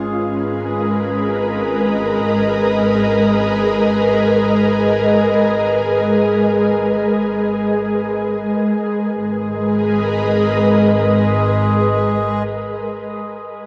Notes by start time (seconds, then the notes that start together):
Already playing: G#1 G#3 C#4 F4 G#4 A#4 B4 G#5
0.87 D#5
9.16 G#1 G#3
9.28 G#4
9.41 A#4
9.52 B4
9.64 D#5